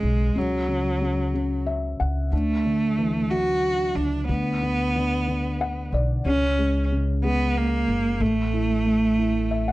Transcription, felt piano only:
0.00 0.36 C#3 medium
0.36 0.66 C#3 medium
0.68 0.99 C#3 soft
1.01 1.32 C#3 soft
1.34 2.29 C#3 soft
1.66 1.97 E5 soft
2.00 2.30 F#5 soft
2.33 4.25 D4 soft
2.66 3.92 D3 soft
2.98 4.25 E3 soft
3.31 4.26 F#3 soft
4.29 4.61 D3 soft
4.63 4.94 D3 soft
4.96 5.26 D3 soft
5.28 6.22 D3 soft
5.61 5.91 F#5 medium
5.94 6.23 D5 medium
6.26 6.91 C#3 medium
6.59 7.23 G#3 soft
6.92 8.18 C#3 soft
7.24 8.19 G#3 soft
8.21 8.84 A3 medium
8.53 9.17 E4 soft
8.86 9.72 A3 soft
9.18 9.72 E4 soft
9.51 9.66 E5 soft
9.68 9.72 F#5 medium

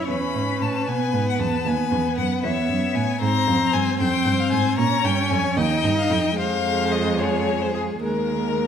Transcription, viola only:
0.09 0.90 C#4 soft
0.89 1.66 B3 soft
1.66 3.19 B3 soft
3.22 3.99 C4 medium
4.00 4.79 C4 medium
4.78 5.60 C#4 medium
5.58 6.36 D#4 medium
6.37 7.99 G#3 medium
8.03 8.67 G#3 soft

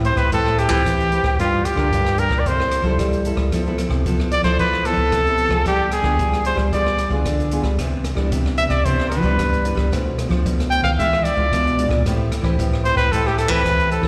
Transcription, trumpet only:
0.06 0.19 C5 medium
0.18 0.32 B4 loud
0.34 0.60 A4 loud
0.59 1.39 G4 loud
1.40 1.67 F4 medium
1.65 2.21 G4 medium
2.19 2.41 A#4 medium
2.39 2.49 D5 medium
2.47 3.00 C5 medium
4.32 4.44 D5 medium
4.44 4.58 C5 loud
4.60 4.88 B4 medium
4.86 5.66 A4 loud
5.68 5.92 G4 medium
5.93 6.42 G#4 medium
6.46 6.58 C5 medium
6.74 7.23 D5 medium
8.58 8.65 E5 medium
8.70 8.87 D5 medium
8.85 9.10 C5 medium
9.10 9.87 B4 medium
10.71 10.83 G5 loud
10.84 10.90 F5 loud
10.99 11.25 E5 medium
11.24 12.05 D5 medium
12.85 12.96 C5 medium
12.97 13.13 B4 loud
13.12 13.28 A4 medium
13.27 13.40 G4 medium
13.38 13.52 A4 medium
13.51 13.91 B4 loud
13.92 14.08 A4 medium

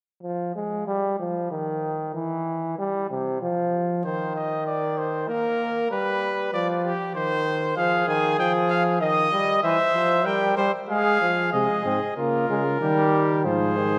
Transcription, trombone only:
0.23 0.53 F3 medium
0.55 0.87 G#3 medium
0.88 1.19 G3 medium
1.20 1.51 F3 medium
1.51 2.14 D#3 medium
2.14 2.77 E3 medium
2.78 3.10 G3 medium
3.10 3.41 C3 medium
3.42 4.04 F3 medium
4.05 5.30 D#3 medium
5.29 5.90 A#3 medium
5.91 6.52 G3 medium
6.53 6.93 F3 medium
7.15 7.73 D#3 medium
7.77 8.07 F3 medium
8.08 8.38 D#3 medium
8.39 9.02 F3 medium
9.00 9.31 D#3 medium
9.32 9.63 G3 medium
9.63 9.77 E3 medium
9.94 10.27 F3 medium
10.26 10.57 G3 medium
10.57 10.72 G3 medium
10.89 11.21 G#3 medium
11.21 11.53 F3 medium
11.54 11.83 G#3 medium
11.85 12.00 C4 medium
12.17 12.49 A#3 medium
12.49 12.64 G#3 medium
12.81 13.47 G3 medium
13.45 13.79 F3 medium
13.77 13.99 D#3 medium

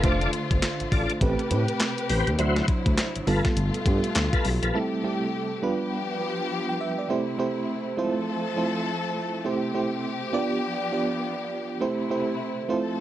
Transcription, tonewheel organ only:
0.04 0.31 F4 medium
0.04 0.31 A4 medium
0.04 0.31 D5 medium
0.92 1.12 F4 medium
0.92 1.13 A4 medium
0.92 1.13 D5 medium
2.09 2.30 C4 medium
2.09 2.30 G4 medium
2.09 2.30 B4 medium
2.39 2.66 E4 medium
2.39 2.67 F#4 medium
2.39 2.67 C5 medium
3.27 3.48 F4 medium
3.27 3.48 A4 medium
3.27 3.48 B4 medium
4.33 4.49 F4 medium
4.33 4.49 A4 medium
4.33 4.49 B4 medium
4.62 4.78 F4 medium
4.62 4.79 A4 medium
4.62 4.79 B4 medium

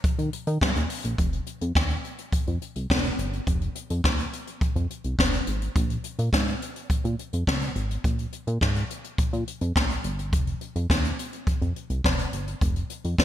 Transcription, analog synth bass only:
0.19 0.30 D#3 medium
0.47 0.58 D#3 loud
0.61 0.72 G2 medium
0.76 0.87 D#2 medium
1.04 1.15 A#1 loud
1.18 1.41 F1 loud
1.61 1.72 F2 loud
1.75 1.98 D#2 medium
2.33 2.38 F2 soft
2.47 2.58 F2 medium
2.76 2.87 C2 medium
2.90 3.12 F1 medium
3.19 3.41 G1 medium
3.47 3.69 F1 loud
3.90 4.01 F2 loud
4.04 4.26 D#2 medium
4.61 4.67 F2 soft
4.76 4.87 F2 medium
5.04 5.15 C2 medium
5.19 5.41 F1 loud
5.47 5.69 G#1 medium
5.76 5.98 A#1 loud
6.19 6.30 A#2 loud
6.33 6.55 G#2 medium
6.90 6.96 A#2 medium
7.04 7.15 A#2 medium
7.33 7.44 F2 medium
7.47 7.69 C#2 loud
7.76 7.98 G#1 medium
8.04 8.26 A#1 loud
8.47 8.58 A#2 loud
8.61 8.83 G#2 medium
9.18 9.24 A#2 soft
9.33 9.44 A#2 loud
9.61 9.72 F2 medium
9.76 9.98 A#1 loud
10.04 10.34 G1 medium
10.33 10.55 F1 loud
10.76 10.87 F2 medium
10.90 11.12 D#2 medium
11.47 11.53 F2 soft
11.62 11.73 F2 medium
11.90 12.01 C2 medium
12.04 12.26 F1 loud
12.33 12.55 G1 medium
12.61 12.84 F1 loud
13.05 13.15 F2 loud
13.19 13.25 D#2 medium

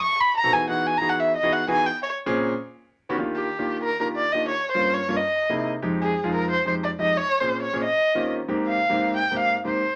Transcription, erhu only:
0.03 0.22 C#6 loud
0.21 0.37 B5 loud
0.37 0.55 A#5 loud
0.53 0.69 G#5 loud
0.70 0.88 F#5 medium
0.87 0.99 G#5 medium
0.98 1.11 A#5 loud
1.09 1.21 F#5 medium
1.20 1.36 E5 medium
1.37 1.54 D#5 loud
1.53 1.69 F#5 medium
1.70 1.87 G#5 loud
1.86 2.02 G5 medium
2.03 2.12 C#5 medium
3.35 3.81 G4 medium
3.84 3.99 A#4 medium
4.01 4.08 A#4 medium
4.16 4.34 D5 medium
4.32 4.48 D#5 medium
4.48 4.70 C#5 medium
4.72 4.95 C5 medium
4.94 5.18 C#5 medium
5.17 5.66 D#5 medium
6.02 6.31 G#4 medium
6.35 6.49 A#4 medium
6.51 6.65 C5 medium
6.67 6.74 C5 medium
6.84 6.91 D5 medium
7.00 7.19 D#5 medium
7.17 7.42 C#5 loud
7.40 7.61 C5 medium
7.62 7.82 C#5 medium
7.84 8.29 D#5 medium
8.67 9.12 F5 medium
9.16 9.36 G5 medium
9.39 9.58 F5 medium
9.66 9.96 C5 medium

